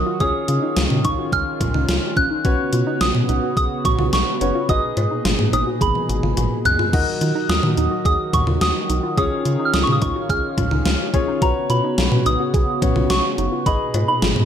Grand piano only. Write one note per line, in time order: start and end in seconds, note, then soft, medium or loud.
0.00 0.16 D#4 medium
0.00 0.16 F#4 medium
0.00 0.16 A#4 medium
0.00 0.16 D#5 medium
0.21 2.41 C#4 medium
0.21 2.41 F4 medium
0.21 2.41 G#4 medium
0.21 2.41 C#5 medium
2.45 4.37 C#4 medium
2.45 4.37 F#4 medium
2.45 4.37 B4 medium
2.45 4.37 C#5 medium
4.41 4.69 C#4 medium
4.41 4.69 F#4 soft
4.41 4.68 B4 soft
4.41 4.69 C#5 medium
4.69 6.89 D#4 medium
4.69 6.89 G#4 medium
4.69 6.89 B4 medium
4.69 6.89 D#5 medium
6.93 9.14 D#4 medium
6.93 9.14 F#4 medium
6.93 9.14 A#4 medium
6.93 9.14 D#5 medium
9.18 11.10 C#4 medium
9.18 11.10 F4 medium
9.18 11.10 G#4 medium
9.18 11.10 C#5 medium
11.14 11.41 C#4 medium
11.14 11.42 F4 medium
11.14 11.42 G#4 medium
11.14 11.41 C#5 medium
11.42 12.79 C#4 medium
11.42 12.79 F#4 medium
11.42 12.79 B4 medium
11.42 12.79 C#5 medium
12.82 13.66 C#4 soft
12.82 13.66 F#4 soft
12.82 13.65 B4 soft
12.82 13.66 C#5 medium
13.66 14.45 D#4 medium
13.66 14.45 G#4 medium
13.66 14.45 B4 medium
13.66 14.45 D#5 medium